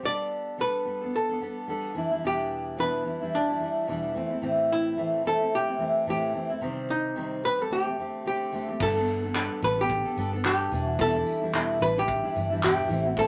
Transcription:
0.03 G3 B3 D4 A4 D5
0.58 G3 B3 D4 A4 B4
0.85 G3 B3 D4 A4
1.02 B3 D4 A4
1.16 A4
1.29 B3 D4 A4
1.40 G3 B3 D4 A4
1.68 G3 B3 D4 A4
1.95 E3 G3 D4 E4
2.11 E3 G3 D4 E4
2.23 E2 B2 E3 G3 D4 E4 G4
2.77 E2 B2 E3 G3 D4 E4 B4
3.05 E3 G3 D4 E4
3.21 E3 G3 D4 E4
3.35 D4
3.48 E3 G3 D4 E4
3.60 E3 G3 D4 E4
3.87 E2 B2 E3 G3 D4 E4
4.14 E3 A3 C4 E4
4.31 A3 C4 E4
4.42 A2 E3 A3 C4 E4
4.72 E4
4.97 A2 E3 A3 C4 E4
5.24 E3 A3 C4 E4 A4
5.40 A3 C4 E4
5.55 G4
5.68 A3 C4 E4
5.78 E3 A3 C4 E4
6.06 A2 E3 A3 C4 E4 G4
6.34 E3 A3 C4 E4
6.50 A3 C4 E4
6.61 C3 D#3 G3 C4 G4
6.90 D#4
7.15 C3 D#3 G3 C4 G4
7.42 D#3 G3 C4 G4 B4
7.59 G3 C4 G4 A4
7.70 D3 A3 C4 G4
7.87 A3 C4 G4
7.98 D3 A3 C4 G4
8.25 D3 A3 C4 G4
8.52 D3 A3 C4 G4
8.69 A3 C4 G4
8.80 G1 G3 B3 D4 A4, kick, crash
8.96 B3 D4 A4
9.08 tambourine
9.23 B3 D4 A4
9.34 G3 B3 D4 A4, clap
9.61 A1 G3 B3 D4 A4 B4, tambourine
9.78 B3 D4 G4 A4
9.90 kick
10.05 B3 D4 A4
10.16 G1 G3 B3 D4 A4, tambourine
10.33 B3 D4 A4
10.44 G3 B3 D4 G4 A4, clap
10.71 E1 E3 G3 D4 E4, tambourine
10.86 F#4
10.99 E2 B2 E3 G3 D4 E4 A4, kick
11.14 E3 G3 D4 E4
11.27 tambourine
11.42 E3 G3 D4 E4
11.53 E2 B2 E3 G3 D4 E4, clap
11.80 A1 E3 G3 D4 E4 B4, tambourine
11.96 E3 G3 D4 E4 G4
12.08 kick
12.24 E3 G3 D4 E4
12.34 G1 E3 G3 D4 E4, tambourine
12.50 E3 G3 D4 E4
12.62 E2 B2 E3 G3 D4 E4 G4, clap
12.89 A1 E3 A3 C4 E4, tambourine
13.04 C4 E4 F#4
13.08 A3
13.16 A2 E3 A3 C4 E4 A4, kick

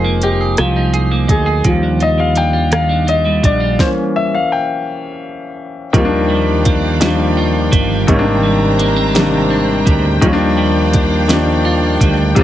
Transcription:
Already playing: F1 D#3 F3 G#3 A#3 D#4 F4 G#4 A#4
0.04 A#3
0.22 D#4 G4, closed hi-hat
0.41 G#4
0.57 C2 F3 F4, cross-stick, closed hi-hat
0.76 D#4
0.94 G#4, closed hi-hat
1.11 A#3
1.28 D2 D#4 G#4, kick, closed hi-hat
1.46 G#4
1.64 D#2 D#3 F3 G3 F4, kick, closed hi-hat
1.83 D4
2.00 F4 D#5, closed hi-hat
2.18 G3 F5
2.36 D4 G5, closed hi-hat
2.53 F4
2.71 D#3 F5, cross-stick, closed hi-hat
2.89 D4
3.07 F4 D#5, closed hi-hat
3.25 G3
3.43 A#1 D4 D5, kick, closed hi-hat
3.61 F4
3.79 E3 A#3 C#4 C5, kick, snare
4.16 E5
4.35 F5
4.52 G5
5.93 D#2 D#3 F3 G3 D5 F5 G5, kick, closed hi-hat
5.97 A#3 C4
6.05 D4
6.30 G3
6.65 D4, kick, closed hi-hat
7.00 D#3 F3 G3 A#3, snare, closed hi-hat
7.05 D4
7.37 F4
7.72 G1 G3, kick, closed hi-hat
8.07 G#1 G#2 C3 D#3 G3 A#3 D4 C5 A#5, kick, closed hi-hat
8.12 C#4
8.19 D4
8.43 G3
8.79 A#3, closed hi-hat
8.96 C4
9.14 C3 D#3 G3 A#3, snare, closed hi-hat
9.20 D4
9.50 D4
9.86 D2 G3, kick, closed hi-hat
10.21 D#2 D#3 F3 G3 D4 D5 F5, kick, closed hi-hat
10.25 A#3 C#4
10.33 D4
10.57 G3
10.93 D4, kick, closed hi-hat
11.28 D#3 F3 G3 A#3, snare, closed hi-hat
11.33 D4
11.65 F4
12.01 D2 G3, kick, closed hi-hat
12.35 D#2 C3 D#3 F3 G3 D4 C5 F5, kick, closed hi-hat
12.39 A#3

